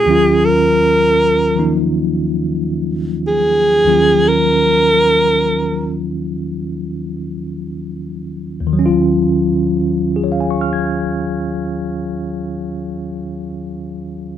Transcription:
0.00 0.47 G#4 medium
0.05 3.83 D#2 medium
0.05 1.55 D#3 soft
0.05 3.85 F#3 soft
0.05 3.86 C#4 medium
0.10 3.87 F4 medium
0.45 1.83 A#4 medium
1.56 3.84 D#3 soft
1.56 3.85 F3 soft
1.56 3.86 A#3 soft
1.56 3.86 D#4 soft
3.27 4.30 G#4 medium
3.84 8.59 D#2 soft
3.84 8.66 D#3 soft
3.84 8.71 F#3 soft
3.84 8.72 C#4 soft
3.89 8.73 F4 medium
4.28 5.97 A#4 medium
8.60 13.10 D#2 medium
8.67 13.16 D#3 medium
8.73 13.22 F#3 medium
8.79 13.28 C#4 medium
8.86 13.35 F4 medium
10.16 14.38 G#4 soft
10.24 14.38 C#5 soft
10.32 14.38 F5 soft
10.40 14.38 G#5 soft
10.51 14.38 C#6 soft
10.61 14.38 F6 soft
10.73 14.38 G#6 soft

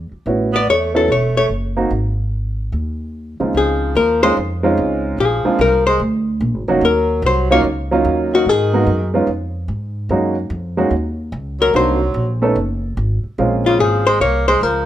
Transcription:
0.11 muted upright bass stroke soft
0.26 0.64 A1 medium
0.26 0.51 B3 medium
0.26 0.51 C#4 medium
0.26 0.51 E4 soft
0.26 0.51 F#4 medium
0.53 0.67 B3 medium
0.53 0.69 D5 medium
0.67 1.06 E2 medium
0.67 0.93 A3 medium
0.67 0.95 C#5 medium
0.94 1.08 F#3 medium
0.94 1.07 B3 medium
0.94 1.08 C#4 medium
0.94 1.08 E4 medium
0.94 1.08 A4 medium
0.94 1.10 A4 medium
1.08 1.47 E1 medium
1.08 1.34 A3 medium
1.08 1.36 C#5 medium
1.37 1.50 A3 medium
1.37 1.46 C#5 medium
1.49 1.88 F#1 medium
1.77 1.90 A#3 medium
1.77 1.90 C4 medium
1.77 1.90 D#4 medium
1.77 1.90 F#4 medium
1.91 2.69 G#1 medium
2.72 3.36 D#2 medium
3.40 3.54 D#2 medium
3.40 3.93 C#3 medium
3.40 3.93 G#3 soft
3.40 3.93 C4 medium
3.40 3.93 D#4 soft
3.40 3.93 F4 medium
3.54 3.94 C#2 medium
3.54 3.94 F3 medium
3.54 3.94 G#4 medium
3.95 4.35 D#2 medium
3.95 4.21 F3 medium
3.95 4.22 A#4 medium
4.23 4.36 G#3 medium
4.23 4.36 C4 medium
4.23 4.36 C#4 medium
4.23 4.36 D#4 medium
4.23 4.36 F4 medium
4.23 4.37 C5 loud
4.37 4.77 F2 medium
4.63 5.16 G#3 medium
4.63 5.16 C4 medium
4.63 5.16 C#4 medium
4.63 5.16 D#4 medium
4.63 5.17 F4 medium
4.77 5.17 C#2 medium
5.18 5.43 A#1 medium
5.18 5.57 F3 medium
5.18 5.58 G#4 medium
5.45 5.58 G#3 medium
5.45 5.58 A#3 medium
5.45 5.58 C4 medium
5.45 5.59 D4 medium
5.45 5.59 F4 medium
5.45 muted upright bass stroke soft
5.59 5.99 C2 medium
5.59 5.85 F3 medium
5.59 5.86 A#4 medium
5.87 6.00 G#3 medium
5.87 6.01 C5 medium
6.00 6.40 D2 medium
6.41 6.54 A#1 medium
6.54 6.67 G#1 medium
6.68 6.80 F1 medium
6.68 6.81 F#3 medium
6.68 6.81 A#3 medium
6.68 6.81 C#4 medium
6.68 6.81 D#4 medium
6.68 6.82 F#4 medium
6.81 7.22 D#2 medium
6.81 7.21 F#3 medium
6.81 7.22 A#4 medium
7.22 7.63 C2 medium
7.22 7.48 F#3 medium
7.26 7.51 C5 medium
7.50 7.63 F#3 medium
7.50 7.64 A#3 medium
7.50 7.64 C#4 medium
7.50 7.64 D#4 medium
7.50 7.64 F4 medium
7.50 7.60 C#5 medium
7.64 8.04 C#2 medium
7.91 8.44 F#3 medium
7.91 8.44 A#3 medium
7.91 8.44 C#4 medium
7.91 8.44 D#4 medium
7.91 8.44 F4 medium
8.05 8.45 D#2 medium
8.33 8.47 D#3 medium
8.33 8.49 F#4 medium
8.45 8.86 G#2 medium
8.45 9.14 D#3 medium
8.45 9.15 G#4 medium
8.73 8.86 G#3 medium
8.73 8.86 A#3 medium
8.73 8.86 B3 medium
8.73 8.87 D#4 medium
8.73 8.87 F#4 medium
8.86 9.26 F#2 medium
9.14 9.27 G#3 medium
9.14 9.27 B3 medium
9.14 9.27 C#4 medium
9.14 9.27 D#4 medium
9.14 9.28 F4 medium
9.27 9.67 F2 medium
9.68 10.09 G#2 medium
10.09 10.49 F#2 medium
10.09 10.34 G#3 medium
10.09 10.34 A#3 medium
10.09 10.34 C#4 medium
10.09 10.35 D#4 medium
10.09 10.35 F#4 medium
10.50 10.90 F2 medium
10.77 10.91 G#3 medium
10.77 10.91 A#3 medium
10.77 10.91 C#4 medium
10.77 10.91 D#4 medium
10.77 10.91 F#4 medium
10.91 11.31 D#2 medium
11.32 11.73 C#2 medium
11.60 11.74 F#3 medium
11.60 11.75 A#4 medium
11.74 12.14 C2 medium
11.74 12.38 F#3 medium
11.74 11.98 A#3 medium
11.74 11.98 C4 medium
11.74 11.98 D4 medium
11.74 11.98 D#4 medium
11.74 11.99 F#4 medium
11.74 12.39 C5 medium
12.14 12.55 A#1 medium
12.42 12.55 A3 medium
12.42 12.55 B3 medium
12.42 12.55 C#4 medium
12.42 12.55 D#4 medium
12.42 12.55 A4 medium
12.55 12.96 F#1 medium
12.97 13.22 G#1 medium
13.24 muted upright bass stroke soft
13.38 13.78 A#1 medium
13.38 14.01 G#3 medium
13.38 14.01 A#3 medium
13.38 14.01 C4 medium
13.38 14.01 C#4 medium
13.38 14.01 F4 medium
13.66 13.79 C#3 medium
13.66 13.80 F4 medium
13.79 14.19 G#1 medium
13.79 14.05 F3 medium
13.79 14.06 G#4 medium
14.07 14.20 G#3 medium
14.07 14.20 C5 loud
14.20 14.60 C2 medium
14.20 14.45 A#3 medium
14.20 14.47 C#5 medium
14.48 14.64 G#3 medium
14.48 14.63 C5 medium
14.61 14.86 C#2 medium
14.61 14.86 F3 medium
14.61 14.86 A#4 medium

